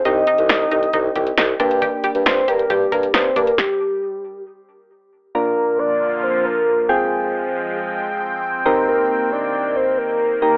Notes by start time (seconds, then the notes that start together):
0.05 C2 C4 D#4 G4 D#5, closed hi-hat
0.27 D#4, closed hi-hat
0.38 C2, closed hi-hat
0.49 C2 D4, snare, closed hi-hat
0.71 C2 D#4, closed hi-hat
0.83 closed hi-hat
0.93 C2 D#4, kick, closed hi-hat
1.16 C2 G4, kick, closed hi-hat
1.27 closed hi-hat
1.38 C2 D#4, snare, closed hi-hat
1.60 G2 A#3 D4 G4, kick, closed hi-hat
1.71 closed hi-hat
1.82 G4, kick, closed hi-hat
2.04 G4, closed hi-hat
2.15 G2, closed hi-hat
2.26 G2 F4 C5, snare, closed hi-hat
2.48 G2 G4 A#4, closed hi-hat
2.59 closed hi-hat
2.70 G2 G4, kick, closed hi-hat
2.92 G2 A#4, kick, closed hi-hat
3.03 closed hi-hat
3.14 G2 D#4 C5, snare, closed hi-hat
3.36 G2 D4 A#4, kick, closed hi-hat
3.47 closed hi-hat
3.58 G4, kick, snare
5.35 D3 F3 A#3 D4 F4 A#4
5.79 D5
6.18 D5
6.23 C5
6.45 A#4
6.89 F3 G#3 C4 F4 G#4 G5
8.66 D#3 A#3 C4 D#4 G4 A#4
8.88 A#4
9.32 D5
9.76 C5
9.98 A#4
10.42 G3 A#3 D#4 G4 A#4